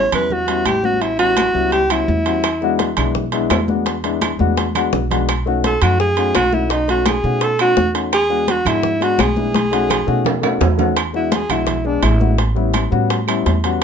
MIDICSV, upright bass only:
0, 0, Header, 1, 2, 480
1, 0, Start_track
1, 0, Tempo, 355450
1, 1373, Time_signature, 4, 2, 24, 8
1, 18685, End_track
2, 0, Start_track
2, 0, Title_t, "Upright bass"
2, 0, Program_c, 0, 32
2, 169, Note_on_c, 0, 40, 88
2, 840, Note_off_c, 0, 40, 0
2, 885, Note_on_c, 0, 33, 92
2, 2011, Note_off_c, 0, 33, 0
2, 2088, Note_on_c, 0, 37, 90
2, 2760, Note_off_c, 0, 37, 0
2, 2813, Note_on_c, 0, 40, 98
2, 3936, Note_off_c, 0, 40, 0
2, 4013, Note_on_c, 0, 35, 90
2, 4684, Note_off_c, 0, 35, 0
2, 4730, Note_on_c, 0, 40, 95
2, 5856, Note_off_c, 0, 40, 0
2, 5941, Note_on_c, 0, 40, 85
2, 6609, Note_off_c, 0, 40, 0
2, 6658, Note_on_c, 0, 35, 92
2, 7780, Note_off_c, 0, 35, 0
2, 7857, Note_on_c, 0, 42, 96
2, 8526, Note_off_c, 0, 42, 0
2, 8578, Note_on_c, 0, 35, 87
2, 9698, Note_off_c, 0, 35, 0
2, 9776, Note_on_c, 0, 47, 98
2, 10444, Note_off_c, 0, 47, 0
2, 10494, Note_on_c, 0, 40, 89
2, 11613, Note_off_c, 0, 40, 0
2, 11698, Note_on_c, 0, 44, 95
2, 12363, Note_off_c, 0, 44, 0
2, 12412, Note_on_c, 0, 35, 90
2, 13531, Note_off_c, 0, 35, 0
2, 13608, Note_on_c, 0, 47, 97
2, 14277, Note_off_c, 0, 47, 0
2, 14326, Note_on_c, 0, 40, 89
2, 15450, Note_off_c, 0, 40, 0
2, 15522, Note_on_c, 0, 35, 89
2, 16196, Note_off_c, 0, 35, 0
2, 16244, Note_on_c, 0, 33, 96
2, 17372, Note_off_c, 0, 33, 0
2, 17448, Note_on_c, 0, 45, 97
2, 18122, Note_off_c, 0, 45, 0
2, 18178, Note_on_c, 0, 40, 93
2, 18685, Note_off_c, 0, 40, 0
2, 18685, End_track
0, 0, End_of_file